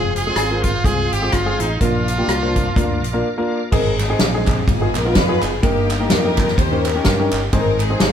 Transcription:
Already playing: F1 G#3 C4 F4 G#4 C5 F5 C6
0.16 C4 F4 G#4, cross-stick, closed hi-hat
0.26 G#3 C4 F4 G#4
0.36 G#1, cross-stick, closed hi-hat
0.50 G#3 C4 F4 A#4
0.63 F4, kick, closed hi-hat
0.74 cross-stick
0.84 C2 G#3 C4 F4 G#4, kick, closed hi-hat
1.12 G#1 G4, closed hi-hat
1.22 G#3 C4 F4 G#4
1.32 G1 F4, kick, cross-stick, closed hi-hat
1.46 G#3 C4 F4 G#4
1.59 A1 D#4, closed hi-hat
1.80 A#1 A#2 A#3 D4 F4 A#4 D5, kick, closed hi-hat
2.08 cross-stick, closed hi-hat
2.18 A#3 D4 F4 G4
2.28 C2, cross-stick, closed hi-hat
2.42 A#3 D4 F4 C5
2.56 kick, closed hi-hat
2.76 D2 A#3 D4 F4 A#4, kick, closed hi-hat
3.03 A#1, closed hi-hat
3.13 A#3 D4 F4 A#4
3.37 A#3 D4 F4 A#4
3.72 G#1 G#2 G#3 C4 D#4 G#4 A#4, kick, crash
3.99 C4 D#4 G#4, snare, clap, ride
4.09 G#3 C4 D#4 G#4
4.19 A#1, snare, ride
4.34 G#3 C4 D#4 G#4
4.46 G4, kick, clap, ride
4.67 G#1 G#2 B3 F4 G#4, kick, ride
4.81 B3 D#4 F4 G#4
4.94 A#1 A#4, clap, ride
5.05 B3 D#4 F4 A#4
5.13 F2 B4, kick, snare, ride
5.28 B3 D#4 F4 G#4
5.40 F#1 G#4, clap, ride
5.61 G1 G2 A#3 D#4 G4 A#4, kick, ride
5.90 clap, ride
6.00 A#3 D#4 G4 A#4
6.09 F2 D#4 G4 A#4, snare, ride
6.24 A#3 D#4 G4 A#4
6.37 kick, clap, ride
6.48 snare
6.57 D#2 D#3 G4 C5, kick, ride
6.71 C#4 D#4 G4 A#4
6.85 C#4 G4 A#4, clap, ride
6.95 C#4 D#4 G4 A#4
7.05 G2, kick, snare, ride
7.19 C#4 D#4 G4 A#4
7.31 G1, clap, ride
7.53 G#1 G#2 C4 D#4 G#4 A#4 C5, kick, ride
7.80 C4 D#4 G#4, clap, ride
7.90 C4 D#4 G#4 C5
8.00 G1, snare, ride

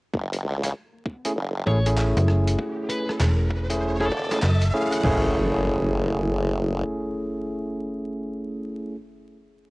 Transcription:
0.14 F#1, kick, riser
0.33 closed hi-hat
0.44 C#2
0.63 cross-stick, closed hi-hat
1.06 kick
1.25 A3 C#4 E4 G#4, closed hi-hat
1.36 F#1
1.67 A1 A3 C#4 E4 G#4 C#5, kick
1.86 A3 C#4 E4 G#4, closed hi-hat
1.97 clap
2.17 F#1, closed hi-hat
2.28 cross-stick
2.47 closed hi-hat
2.59 kick
2.89 B4, closed hi-hat
3.09 cross-stick
3.20 E1, clap, closed hi-hat
3.50 kick
3.70 A3 C#4 E4 G#4, kick, closed hi-hat
4.00 A3 C#4 E4 G#4 A4, cross-stick
4.12 E1, kick
4.31 A3 C#4 E4 G#4, cross-stick, closed hi-hat
4.42 F#1, clap
4.62 closed hi-hat
4.74 A3 C#4 E4 G#4
4.92 closed hi-hat
5.03 F#1 A3 C#4 E4 G#4, snare, floor tom, crash, impact

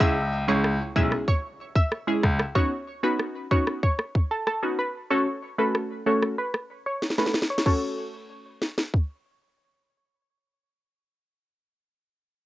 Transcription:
Already playing: downlifter
0.00 C#2 G#3 C#4 E4 G#4 E5, kick
0.48 C#2 G#3 C#4 E4 G#4 C#5
0.64 cross-stick
0.96 B1 G#3 C#4 E4 G#4 E5, kick
1.12 cross-stick
1.28 C#5, kick
1.76 E5, kick
1.92 cross-stick
2.07 G#3 C#4 E4 G#4
2.23 C#2, kick, cross-stick
2.39 cross-stick
2.55 B3 C#4 D#4 F#4 C#5, kick
3.03 B3 C#4 D#4 F#4 B4
3.19 cross-stick
3.51 B3 C#4 D#4 F#4 C#5, kick
3.67 cross-stick
3.83 C#5, kick
3.99 cross-stick
4.15 kick
4.31 A4
4.47 A4, cross-stick
4.62 B3 C#4 D#4 F#4
4.79 B4
5.10 A3 C#4 F#4 A4 C#5
5.58 A3 C#4 F#4 A4 B4
5.75 cross-stick
6.06 A3 C#4 F#4 A4 C#5
6.22 cross-stick
6.38 B4
6.54 cross-stick
6.86 C#5
7.02 snare
7.10 snare
7.18 A3 C#4 F#4 A4 B4, snare
7.26 snare
7.34 snare
7.42 snare
7.50 C#5
7.58 snare
7.66 A3 C#4 F#4 A4 C#5, kick, crash
8.62 snare
8.78 snare
8.94 kick

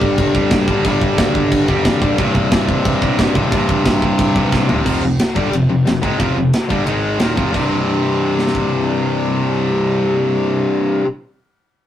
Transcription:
Already playing: G2 D3 G3
0.01 G1, kick
0.18 G1, kick, china
0.35 F2 G2 D3 G3, kick
0.50 G1 G2 D3 G3, kick, snare, china
0.67 G1 D3 G3, kick
0.72 G2
0.83 G1 G2 D3 G3, kick, china
1.01 kick
1.18 D2, kick, snare, china
1.35 G1, kick
1.52 G1, kick, china
1.68 F2 G2 D3 G3, kick
1.84 F2 G2 D3 G3, kick, snare, china
2.01 D1 D3 G3, kick
2.06 G2
2.17 C1 C2 G2 C3, kick, china
2.35 C1, kick
2.51 G1, kick, snare, china
2.69 C1, kick
2.85 C1, kick, china
3.02 B1 C2 G2 C3, kick
3.18 C1 C2 G2 C3, kick, snare, china
3.35 C1 C2 G2 C3, kick
3.50 C1 C2 G2 C3, kick, china
3.69 kick
3.86 G1, kick, snare, china
4.02 C1, kick
4.19 C1, kick, china
4.34 B1 C2 G2 C3, kick
4.51 B1 C2 G2 C3, kick, snare
4.68 D#1 G2 C3, floor tom
4.72 C2
4.85 F1 F2 C3 F3, kick, crash
5.02 F1 F2 C3
5.19 snare, ride bell
5.35 G1 G2 D3 G3, kick
5.52 F1 F2 C3, ride bell
5.69 F1 F2 C3
5.87 F1 F2 C3, snare, ride bell
6.02 G#1 G#2 D#3 G#3, kick
6.19 F1 F2 C3 F3, kick, ride bell
6.36 F1 F2 C3
6.53 snare, ride bell
6.70 G1 G2 D3 G3, kick
6.86 G#1 G#2 D#3 G#3, ride bell
7.20 D#1 D#2 A#2 D#3, snare, ride bell
7.37 F1 F2 C3 F3, kick
7.52 C1 C2 G2 C3, kick, crash
8.39 snare
8.47 snare
8.55 kick

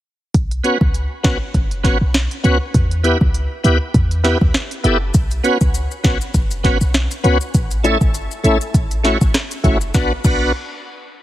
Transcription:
0.34 B1, kick, closed hi-hat
0.51 closed hi-hat
0.63 B3 C#4 F#4 B4, closed hi-hat
0.81 C#2, kick
0.94 closed hi-hat
1.23 B1 B3 C#4 F#4 B4, kick, snare, closed hi-hat
1.54 F#1, kick, closed hi-hat
1.71 closed hi-hat
1.84 B3 C#4 F#4 B4, kick, snare, closed hi-hat
2.01 B1
2.14 snare, closed hi-hat
2.31 closed hi-hat
2.43 C#2 B3 C#4 F#4 B4, closed hi-hat
2.74 E2, kick, closed hi-hat
2.91 closed hi-hat
3.04 B3 E4 G4 B4, closed hi-hat
3.21 C#2, kick
3.34 closed hi-hat
3.64 D2 B3 E4 G4 B4, closed hi-hat
3.94 E2, kick, closed hi-hat
4.11 closed hi-hat
4.24 B3 E4 G4 B4, snare, closed hi-hat
4.41 D2, kick
4.54 snare, closed hi-hat
4.71 closed hi-hat
4.83 F#1 B3 E4 G4 A4, closed hi-hat
5.14 B1, kick, closed hi-hat, maracas
5.31 closed hi-hat, maracas
5.43 B3 C#4 F#4 B4, closed hi-hat, maracas
5.61 C#2, kick, maracas
5.74 closed hi-hat, maracas
5.91 maracas
6.03 B1 B3 C#4 F#4 B4, kick, snare, closed hi-hat, maracas
6.21 maracas
6.34 F#1, kick, closed hi-hat, maracas
6.51 closed hi-hat, maracas
6.63 B3 C#4 F#4 B4, kick, snare, closed hi-hat
6.81 B1, maracas
6.94 snare, closed hi-hat, maracas
7.11 closed hi-hat, maracas
7.24 C#2 B3 C#4 F#4 B4, closed hi-hat
7.41 maracas
7.54 A1, kick, closed hi-hat, maracas
7.71 closed hi-hat, maracas
7.84 A3 C#4 E4 A4, closed hi-hat, high timbale, maracas
8.01 G1, kick, maracas
8.14 closed hi-hat, maracas
8.31 maracas
8.44 A1 A3 C#4 E4 A4, closed hi-hat, maracas
8.61 maracas
8.74 A1, kick, closed hi-hat, maracas
8.91 closed hi-hat, maracas
9.03 A3 C#4 E4 F#4, snare, closed hi-hat
9.21 G1, kick, maracas
9.34 cross-stick, snare, closed hi-hat, maracas
9.51 closed hi-hat, maracas
9.64 F#1 A3 C#4 E4 F#4, kick, closed hi-hat
9.81 maracas
9.94 B1 B3 D4 F#4 B4, kick, snare, maracas
10.24 B1 B3 D4 F#4 B4, kick, crash, maracas

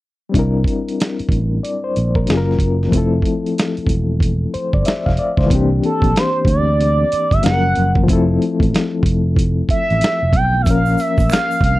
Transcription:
0.29 G3 C4
0.34 C2 D4 E4, kick, closed hi-hat
0.39 A#4
0.64 kick, closed hi-hat
0.89 closed hi-hat
1.00 snare, closed hi-hat
1.19 muted fingered electric bass stroke, closed hi-hat
1.29 A1, kick, closed hi-hat
1.63 D5, closed hi-hat
1.84 C5
1.96 A#1, closed hi-hat
2.15 A#4, kick
2.26 F#1 F#3 A#3 C#4 F4, closed hi-hat
2.30 G#4, snare
2.37 A#4
2.51 snare
2.59 F#1, kick, closed hi-hat
2.83 snare
2.88 F3 A3
2.92 F1 C4 E4, kick, closed hi-hat
2.98 A4
3.22 kick, closed hi-hat
3.46 closed hi-hat
3.58 snare, closed hi-hat
3.77 muted fingered electric bass stroke, closed hi-hat
3.87 E1, kick, closed hi-hat
4.20 kick, closed hi-hat
4.54 C5, muted fingered electric bass stroke, closed hi-hat
4.73 G1 D5, kick
4.85 E5, muted fingered electric bass stroke, snare, closed hi-hat
5.06 F1 F5, kick, snare
5.17 D5, closed hi-hat
5.37 C#2 C5, kick, snare
5.46 E3 A#3
5.50 C2 C4 D4, kick, closed hi-hat
5.55 G4
5.84 A4, closed hi-hat
6.02 A#1, kick, closed hi-hat
6.16 C5, snare, closed hi-hat
6.45 D2, kick, closed hi-hat
6.49 D5
6.81 closed hi-hat
7.12 muted fingered electric bass stroke, closed hi-hat
7.31 G1 E5, kick, closed hi-hat
7.42 F#1 F3 F#3 A#3 C#4 F#5, closed hi-hat
7.46 G#4, snare
7.53 A#4
7.75 F#1, closed hi-hat
7.95 kick
8.04 F3 A3
8.08 F1 C4 E4, kick, closed hi-hat
8.13 A4
8.42 closed hi-hat
8.60 A1, kick, closed hi-hat
8.74 snare, closed hi-hat
9.03 F1, kick, closed hi-hat
9.36 kick, closed hi-hat
9.69 E5, muted fingered electric bass stroke, kick, closed hi-hat
9.90 A1, closed hi-hat
10.01 snare, closed hi-hat
10.23 F1
10.33 B1 G5, kick, closed hi-hat
10.62 F3 A#3 E5
10.66 A#1 C#4 F5, kick, closed hi-hat, shaker
10.71 A#4
10.85 shaker
10.98 E5, closed hi-hat, shaker
11.18 A1, kick, closed hi-hat, shaker
11.30 F5, finger snap, snare, closed hi-hat, shaker
11.51 shaker
11.61 C2, kick, closed hi-hat
11.65 F5

